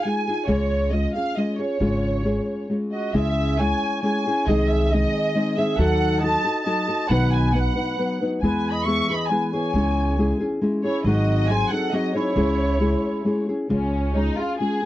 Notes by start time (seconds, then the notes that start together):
0.03 G#3 D#4 F4 G#4 G#5
0.28 D#4 F4 G#4
0.47 C#2 C#3 G#3 C#4 F4 G#4 C#5
0.91 G#3 C#4 F4 G#4 D#5
1.14 C#4 F4 G#4 F5
1.36 G#3 C#4 F4 G#4 D#5
1.57 C#4 F4 G#4 C#5
1.80 G#1 C#3 G#3 C#4 F4 G#4
2.25 G#3 C#4 F4 G#4
2.69 G#3 C#4 F4 G#4
2.92 F#4 D#5
3.13 C#2 C#3 G#3 C#4 E4 G#4 E5
3.58 G#3 C#4 E4 G#4 C#5 G#5
4.02 G#3 C#4 E4 G#4 C#5 G#5
4.27 C#4 E4 G#4
4.46 C2 C3 D#3 G#3 C4 D#4 G#4 D#5
4.68 G#4 E5
4.88 G#4 D#5
4.93 G#3 C4 D#4 G#4
5.35 G#3 C4 D#4 G#4
5.55 C4 D#4 G#4 E5
5.60 G#3
5.76 D#2 D#3 F#3 D#4 F#4 A4 F#5
6.20 F#3 D#4 D#5 A5
6.24 F#4 A4
6.44 D#4 F#4 A4
6.63 F#3 D#4 F#4 A4 D#5 A5
6.88 D#4 F#4 A4
7.08 B1 B2 D#3 F#3 B3 D#4 B4 F#5
7.31 B4 G#5
7.53 F#3 B3 D#4 B4 F#5
7.76 F#3 B3 D#4 B4
7.98 F#3 B3 D#4 B4
8.21 F#3 B3 D#4 B4
8.42 E2 E3 G#3 B3 E4 G#4 B4 G#5
8.71 D#5 B5
8.84 G#3 B3 E4 G#4 E5 C#6
9.10 B3 E4 G#4 B5
9.15 D#5
9.27 G#3 B3 B4 G#5
9.32 E4 G#4
9.51 E4 G#4 C#5 G#5
9.55 B3
9.74 C#2 C#3 G#3 C#4 E4 G#4
10.18 G#3 C#4 E4 G#4
10.40 C#4 E4 G#4
10.62 G#3 C#4 E4 G#4
10.84 C#4 E4 G#4 C#5
11.04 G#1 G#2 D#3 F#3 C4 D#4 F#4 G#4 D#5
11.48 F#3 C4 D#4 G#4 C5 G#5
11.71 F#3 C4 D#4 G#4 A4 F#5
11.93 F#3 C4 D#4 F#4 G#4 D#5
12.15 F#3 C4 D#4 E4 G#4 C#5
12.36 C#2 C#3 G#3 C#4 E4 G#4
12.80 G#3 C#4 E4 G#4
13.25 G#3 C#4 E4 G#4
13.49 C#4 E4 G#4
13.69 C#2 C#3 G#3 C#4 F4 G#4
14.15 G#3 C#4 D#4 F4 G#4
14.38 C#4 F4 G#4
14.59 G#3 C#4 F4 G#4